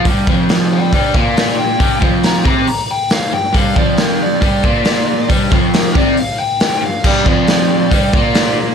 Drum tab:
CC |--------|--------|--------|--------|
HH |o-o-o-o-|o-o-o-o-|o-o-o-o-|o-o-o-o-|
SD |--o---o-|--o---o-|--o---o-|--o---o-|
BD |oo--oo--|oo-o----|oo--oo--|oo-o----|

CC |x-------|
HH |--o-o-o-|
SD |--o---o-|
BD |oo--oo--|